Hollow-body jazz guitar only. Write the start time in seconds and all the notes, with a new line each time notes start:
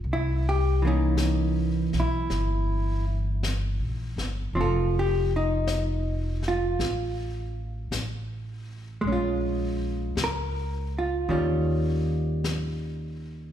0.13 E4
0.49 G4
0.82 E3 A#3
0.87 C#4 D#4
2.00 E4
4.55 F3 C4
4.61 F4 A4
4.99 G4
5.36 D#4
6.48 F4
9.01 G#3
9.07 C#4
9.12 F4
10.24 A#4
10.99 F4
11.29 D#3 G3 C#4 F4